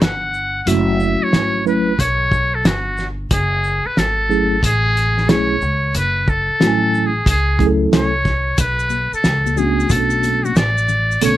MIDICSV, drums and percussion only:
0, 0, Header, 1, 2, 480
1, 0, Start_track
1, 0, Key_signature, 3, "minor"
1, 0, Tempo, 659341
1, 488, Time_signature, 4, 2, 24, 8
1, 8277, End_track
2, 0, Start_track
2, 0, Title_t, "Drums"
2, 12, Note_on_c, 9, 42, 73
2, 13, Note_on_c, 9, 38, 107
2, 85, Note_off_c, 9, 38, 0
2, 85, Note_off_c, 9, 42, 0
2, 245, Note_on_c, 9, 82, 52
2, 318, Note_off_c, 9, 82, 0
2, 487, Note_on_c, 9, 42, 96
2, 560, Note_off_c, 9, 42, 0
2, 729, Note_on_c, 9, 82, 51
2, 802, Note_off_c, 9, 82, 0
2, 968, Note_on_c, 9, 38, 86
2, 979, Note_on_c, 9, 42, 61
2, 1040, Note_off_c, 9, 38, 0
2, 1051, Note_off_c, 9, 42, 0
2, 1215, Note_on_c, 9, 82, 44
2, 1288, Note_off_c, 9, 82, 0
2, 1447, Note_on_c, 9, 36, 87
2, 1454, Note_on_c, 9, 42, 99
2, 1520, Note_off_c, 9, 36, 0
2, 1527, Note_off_c, 9, 42, 0
2, 1686, Note_on_c, 9, 36, 85
2, 1694, Note_on_c, 9, 82, 47
2, 1759, Note_off_c, 9, 36, 0
2, 1767, Note_off_c, 9, 82, 0
2, 1931, Note_on_c, 9, 38, 107
2, 1931, Note_on_c, 9, 42, 75
2, 2004, Note_off_c, 9, 38, 0
2, 2004, Note_off_c, 9, 42, 0
2, 2166, Note_on_c, 9, 82, 56
2, 2175, Note_on_c, 9, 38, 39
2, 2239, Note_off_c, 9, 82, 0
2, 2248, Note_off_c, 9, 38, 0
2, 2408, Note_on_c, 9, 42, 104
2, 2409, Note_on_c, 9, 36, 114
2, 2481, Note_off_c, 9, 42, 0
2, 2482, Note_off_c, 9, 36, 0
2, 2651, Note_on_c, 9, 82, 48
2, 2723, Note_off_c, 9, 82, 0
2, 2891, Note_on_c, 9, 38, 82
2, 2902, Note_on_c, 9, 42, 61
2, 2964, Note_off_c, 9, 38, 0
2, 2974, Note_off_c, 9, 42, 0
2, 3137, Note_on_c, 9, 82, 42
2, 3210, Note_off_c, 9, 82, 0
2, 3369, Note_on_c, 9, 36, 84
2, 3376, Note_on_c, 9, 42, 98
2, 3442, Note_off_c, 9, 36, 0
2, 3449, Note_off_c, 9, 42, 0
2, 3618, Note_on_c, 9, 42, 48
2, 3618, Note_on_c, 9, 82, 48
2, 3691, Note_off_c, 9, 42, 0
2, 3691, Note_off_c, 9, 82, 0
2, 3768, Note_on_c, 9, 38, 35
2, 3841, Note_off_c, 9, 38, 0
2, 3852, Note_on_c, 9, 38, 115
2, 3852, Note_on_c, 9, 42, 67
2, 3924, Note_off_c, 9, 42, 0
2, 3925, Note_off_c, 9, 38, 0
2, 4086, Note_on_c, 9, 82, 53
2, 4159, Note_off_c, 9, 82, 0
2, 4329, Note_on_c, 9, 42, 93
2, 4402, Note_off_c, 9, 42, 0
2, 4568, Note_on_c, 9, 82, 48
2, 4570, Note_on_c, 9, 36, 85
2, 4641, Note_off_c, 9, 82, 0
2, 4643, Note_off_c, 9, 36, 0
2, 4809, Note_on_c, 9, 38, 88
2, 4820, Note_on_c, 9, 42, 64
2, 4882, Note_off_c, 9, 38, 0
2, 4893, Note_off_c, 9, 42, 0
2, 5056, Note_on_c, 9, 82, 48
2, 5129, Note_off_c, 9, 82, 0
2, 5287, Note_on_c, 9, 36, 87
2, 5294, Note_on_c, 9, 42, 98
2, 5360, Note_off_c, 9, 36, 0
2, 5366, Note_off_c, 9, 42, 0
2, 5525, Note_on_c, 9, 36, 85
2, 5535, Note_on_c, 9, 42, 44
2, 5535, Note_on_c, 9, 82, 48
2, 5598, Note_off_c, 9, 36, 0
2, 5608, Note_off_c, 9, 42, 0
2, 5608, Note_off_c, 9, 82, 0
2, 5772, Note_on_c, 9, 42, 75
2, 5773, Note_on_c, 9, 38, 107
2, 5845, Note_off_c, 9, 38, 0
2, 5845, Note_off_c, 9, 42, 0
2, 6005, Note_on_c, 9, 82, 54
2, 6008, Note_on_c, 9, 36, 87
2, 6014, Note_on_c, 9, 38, 37
2, 6078, Note_off_c, 9, 82, 0
2, 6080, Note_off_c, 9, 36, 0
2, 6087, Note_off_c, 9, 38, 0
2, 6246, Note_on_c, 9, 42, 95
2, 6246, Note_on_c, 9, 82, 62
2, 6247, Note_on_c, 9, 36, 108
2, 6319, Note_off_c, 9, 42, 0
2, 6319, Note_off_c, 9, 82, 0
2, 6320, Note_off_c, 9, 36, 0
2, 6402, Note_on_c, 9, 82, 38
2, 6475, Note_off_c, 9, 82, 0
2, 6479, Note_on_c, 9, 63, 42
2, 6479, Note_on_c, 9, 82, 43
2, 6487, Note_off_c, 9, 82, 0
2, 6487, Note_on_c, 9, 82, 49
2, 6551, Note_off_c, 9, 63, 0
2, 6559, Note_off_c, 9, 82, 0
2, 6650, Note_on_c, 9, 82, 37
2, 6723, Note_off_c, 9, 82, 0
2, 6726, Note_on_c, 9, 38, 89
2, 6728, Note_on_c, 9, 82, 57
2, 6737, Note_on_c, 9, 42, 62
2, 6799, Note_off_c, 9, 38, 0
2, 6801, Note_off_c, 9, 82, 0
2, 6810, Note_off_c, 9, 42, 0
2, 6891, Note_on_c, 9, 63, 61
2, 6891, Note_on_c, 9, 82, 41
2, 6964, Note_off_c, 9, 63, 0
2, 6964, Note_off_c, 9, 82, 0
2, 6971, Note_on_c, 9, 64, 56
2, 6971, Note_on_c, 9, 82, 39
2, 6975, Note_off_c, 9, 82, 0
2, 6975, Note_on_c, 9, 82, 45
2, 7044, Note_off_c, 9, 64, 0
2, 7048, Note_off_c, 9, 82, 0
2, 7135, Note_on_c, 9, 82, 42
2, 7203, Note_off_c, 9, 82, 0
2, 7203, Note_on_c, 9, 82, 57
2, 7207, Note_on_c, 9, 36, 92
2, 7215, Note_on_c, 9, 42, 100
2, 7276, Note_off_c, 9, 82, 0
2, 7280, Note_off_c, 9, 36, 0
2, 7288, Note_off_c, 9, 42, 0
2, 7355, Note_on_c, 9, 82, 41
2, 7428, Note_off_c, 9, 82, 0
2, 7451, Note_on_c, 9, 63, 51
2, 7451, Note_on_c, 9, 82, 39
2, 7455, Note_off_c, 9, 82, 0
2, 7455, Note_on_c, 9, 42, 48
2, 7455, Note_on_c, 9, 82, 45
2, 7524, Note_off_c, 9, 63, 0
2, 7528, Note_off_c, 9, 42, 0
2, 7528, Note_off_c, 9, 82, 0
2, 7609, Note_on_c, 9, 63, 66
2, 7609, Note_on_c, 9, 82, 45
2, 7682, Note_off_c, 9, 63, 0
2, 7682, Note_off_c, 9, 82, 0
2, 7686, Note_on_c, 9, 82, 54
2, 7692, Note_on_c, 9, 38, 115
2, 7692, Note_on_c, 9, 42, 69
2, 7759, Note_off_c, 9, 82, 0
2, 7764, Note_off_c, 9, 42, 0
2, 7765, Note_off_c, 9, 38, 0
2, 7846, Note_on_c, 9, 82, 44
2, 7919, Note_off_c, 9, 82, 0
2, 7926, Note_on_c, 9, 64, 57
2, 7926, Note_on_c, 9, 82, 39
2, 7999, Note_off_c, 9, 64, 0
2, 7999, Note_off_c, 9, 82, 0
2, 8091, Note_on_c, 9, 82, 40
2, 8164, Note_off_c, 9, 82, 0
2, 8165, Note_on_c, 9, 42, 96
2, 8169, Note_on_c, 9, 82, 65
2, 8237, Note_off_c, 9, 42, 0
2, 8242, Note_off_c, 9, 82, 0
2, 8277, End_track
0, 0, End_of_file